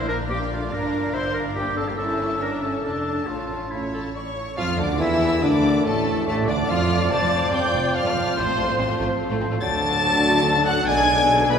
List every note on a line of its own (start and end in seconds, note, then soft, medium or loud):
0.00 0.70 A#1 medium
0.00 0.27 A#3 medium
0.00 1.95 D5 medium
0.00 1.95 F5 medium
0.09 0.30 D4 medium
0.09 0.18 A#4 loud
0.09 0.18 A#5 loud
0.30 0.51 A#3 medium
0.30 1.12 D4 medium
0.30 0.40 G4 loud
0.30 0.51 G5 medium
0.51 0.72 A3 medium
0.51 0.74 F4 medium
0.51 0.59 F5 medium
0.72 2.84 G1 medium
0.72 1.14 D4 loud
0.72 1.15 A#4 loud
0.72 1.14 A#5 medium
1.13 1.97 D4 medium
1.13 1.22 E4 medium
1.13 1.33 C5 loud
1.13 1.35 C6 medium
1.34 1.56 D4 medium
1.34 1.44 A#4 medium
1.34 1.56 A#5 medium
1.56 1.78 A#3 medium
1.56 1.76 G4 loud
1.56 1.78 G5 medium
1.77 1.82 C4 medium
1.77 1.90 A4 loud
1.77 1.89 A5 medium
1.88 1.99 A#3 medium
1.88 1.97 G4 medium
1.88 2.00 G5 medium
1.97 2.41 C#4 medium
1.97 2.40 E4 medium
1.97 2.40 A4 loud
1.97 2.80 C#5 medium
1.97 2.80 E5 medium
1.97 2.43 A5 medium
2.41 2.83 C#4 medium
2.41 2.64 D4 medium
2.41 2.52 A#4 medium
2.41 2.63 A#5 medium
2.63 2.85 C#4 medium
2.63 2.84 A4 medium
2.63 2.85 A5 medium
2.83 3.27 F1 medium
2.83 3.27 D4 medium
2.83 3.28 D4 medium
2.83 3.28 A4 medium
2.83 3.25 D5 medium
2.83 3.63 A5 medium
2.83 3.28 A5 medium
3.27 4.35 A1 medium
3.27 3.71 A3 medium
3.27 4.36 C#4 medium
3.27 3.73 F4 medium
3.27 3.64 C#5 medium
3.27 3.72 F5 medium
3.71 4.14 A3 medium
3.71 4.15 E4 medium
3.71 4.12 C#5 medium
3.71 3.94 E5 medium
3.93 4.03 A4 medium
3.93 4.00 A4 medium
3.93 4.14 A5 medium
4.14 4.56 C#5 medium
4.14 4.57 C#5 medium
4.14 4.36 D5 medium
4.14 4.58 C#6 medium
4.36 4.44 C#5 medium
4.57 4.80 F2 medium
4.57 4.78 F2 medium
4.57 4.77 F3 medium
4.57 4.67 F3 medium
4.57 4.81 F4 loud
4.57 4.78 F4 loud
4.57 4.78 F4 medium
4.57 4.67 F5 loud
4.57 4.79 F5 loud
4.57 4.79 F6 loud
4.78 5.00 D2 medium
4.78 5.01 D2 medium
4.78 5.00 D3 medium
4.78 4.99 D3 medium
4.78 5.00 D4 medium
4.78 5.00 D5 medium
4.78 4.99 D5 medium
4.78 5.01 D6 medium
4.99 5.44 E2 medium
4.99 5.43 E2 medium
4.99 5.43 E3 loud
4.99 5.42 E3 loud
4.99 5.41 E4 medium
4.99 5.42 E4 loud
4.99 5.44 E4 loud
4.99 5.40 A4 medium
4.99 5.45 E5 medium
4.99 5.43 E5 medium
4.99 5.43 E6 loud
5.42 5.84 D2 medium
5.42 5.85 D2 medium
5.42 5.84 D3 medium
5.42 5.83 D4 medium
5.42 5.84 D4 medium
5.42 5.86 D4 medium
5.42 5.85 A#4 medium
5.42 5.84 D5 medium
5.42 5.85 D5 medium
5.42 5.86 D6 loud
5.84 6.26 A1 medium
5.84 6.25 A2 medium
5.84 6.26 A2 medium
5.84 6.26 A3 medium
5.84 6.26 A3 loud
5.84 6.26 A3 medium
5.84 6.26 A4 medium
5.84 6.27 A4 medium
5.84 6.26 A4 medium
5.84 6.27 A5 loud
6.26 6.48 A1 medium
6.26 6.50 A1 loud
6.26 6.47 A2 medium
6.26 6.48 A2 medium
6.26 6.50 A3 medium
6.26 6.48 A3 medium
6.26 6.35 A3 medium
6.26 6.48 A4 medium
6.26 6.47 A4 medium
6.26 8.37 D5 loud
6.26 6.36 A5 loud
6.47 6.68 D2 medium
6.47 6.69 D2 medium
6.47 6.68 D3 loud
6.47 6.71 D3 medium
6.47 6.56 D4 medium
6.47 6.70 D4 medium
6.47 6.71 D5 medium
6.47 6.69 D5 medium
6.47 6.69 D6 loud
6.67 7.10 F2 loud
6.67 7.10 F2 medium
6.67 7.09 F3 medium
6.67 7.11 F3 medium
6.67 7.11 F4 loud
6.67 7.11 F4 medium
6.67 7.11 F4 loud
6.67 7.10 F5 medium
6.67 7.11 F5 medium
6.67 7.11 F6 loud
7.09 7.16 F1 medium
7.09 7.14 F2 medium
7.09 9.58 F3 medium
7.09 7.91 F3 medium
7.09 7.16 A3 medium
7.09 9.59 C4 medium
7.09 9.59 F4 medium
7.09 7.91 C5 medium
7.09 7.54 A5 loud
7.09 7.53 A5 loud
7.09 7.52 A6 loud
7.20 7.25 F2 medium
7.20 7.26 C4 medium
7.31 7.37 F1 medium
7.31 7.35 F2 medium
7.31 7.36 A3 medium
7.41 7.46 F2 loud
7.41 7.48 A3 medium
7.51 7.58 F1 medium
7.51 7.56 F2 medium
7.51 7.58 C4 medium
7.51 7.97 G5 medium
7.51 7.94 G5 loud
7.51 7.95 G6 loud
7.62 7.66 F2 medium
7.62 7.68 A3 medium
7.72 7.78 F1 loud
7.72 7.79 F1 medium
7.72 7.77 F2 loud
7.72 7.78 A3 medium
7.95 8.36 F3 medium
7.95 8.36 C5 medium
7.95 8.36 F5 loud
7.95 8.36 F6 loud
8.03 8.08 F2 loud
8.03 8.10 A3 medium
8.14 8.20 F1 medium
8.14 8.18 F2 medium
8.14 8.20 C4 medium
8.24 8.29 F2 medium
8.24 8.31 A3 medium
8.35 8.41 A1 medium
8.35 8.42 A1 medium
8.35 8.39 A2 loud
8.35 8.78 F3 medium
8.35 8.41 A3 medium
8.35 8.77 C5 loud
8.35 8.78 C5 medium
8.35 9.19 C5 loud
8.35 8.78 C5 loud
8.35 8.79 C6 loud
8.45 8.50 A2 medium
8.45 8.52 C4 medium
8.56 8.62 A1 medium
8.56 8.61 A2 medium
8.56 8.63 A3 medium
8.67 8.72 A2 loud
8.67 8.72 A3 loud
8.78 8.82 A1 medium
8.78 8.83 A1 medium
8.78 8.82 A2 medium
8.78 9.61 F3 medium
8.78 8.83 C4 medium
8.78 8.99 C5 medium
8.78 9.64 C5 medium
8.78 8.86 C5 medium
8.78 9.00 C6 loud
8.88 8.92 A2 medium
8.88 8.93 A3 medium
8.98 9.03 A1 loud
8.98 9.04 A1 loud
8.98 9.02 A2 loud
8.98 9.04 A3 loud
9.20 11.59 A4 loud
9.30 9.34 A2 loud
9.30 9.35 A3 medium
9.41 9.45 A1 medium
9.41 9.46 A1 medium
9.41 9.45 A2 medium
9.41 9.45 C4 medium
9.51 9.55 A2 medium
9.51 9.56 A3 medium
9.61 10.83 D2 medium
9.61 10.84 D2 loud
9.61 10.83 D3 loud
9.61 10.85 F#3 medium
9.61 10.85 F#3 loud
9.61 11.59 D4 loud
9.61 11.59 D4 medium
9.61 10.84 F#4 medium
9.61 10.70 D5 medium
9.61 10.62 A5 loud
9.61 10.63 A5 loud
9.61 10.62 A6 loud
10.65 10.88 F#5 loud
10.65 10.88 F#6 loud
10.86 11.59 B1 loud
10.86 11.59 B1 medium
10.86 11.59 B2 loud
10.86 11.54 G#3 medium
10.86 11.59 G#3 loud
10.86 11.59 G#4 medium
10.86 11.59 D5 medium
10.86 11.49 G#5 loud
10.86 11.50 G#5 loud
10.86 11.49 G#6 loud
11.50 11.59 B4 loud
11.50 11.58 B5 loud